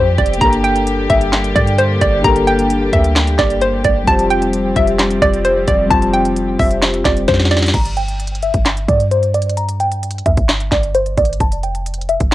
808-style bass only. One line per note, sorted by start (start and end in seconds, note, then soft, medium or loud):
0.00 0.17 F2 loud
0.18 0.40 F1 loud
0.41 1.07 G1 loud
1.10 1.54 G1 loud
1.56 2.00 G2 loud
2.01 2.23 G1 loud
2.24 2.90 G1 loud
2.93 3.37 D2 loud
3.39 3.83 G1 loud
3.85 4.07 G1 loud
4.07 4.73 F1 loud
4.76 5.20 F1 loud
5.22 5.66 F1 loud
5.68 5.90 F1 loud
5.91 6.57 F1 loud
6.59 7.03 F1 loud
7.05 7.27 F1 loud
7.28 7.72 F2 loud
7.74 8.51 G1 loud
8.54 8.87 G1 loud
8.88 10.22 G2 loud
10.26 10.37 D2 loud
10.37 10.70 G1 loud
10.72 11.16 G1 loud
11.17 11.39 G1 loud
11.40 12.17 F1 loud
12.21 12.35 F1 loud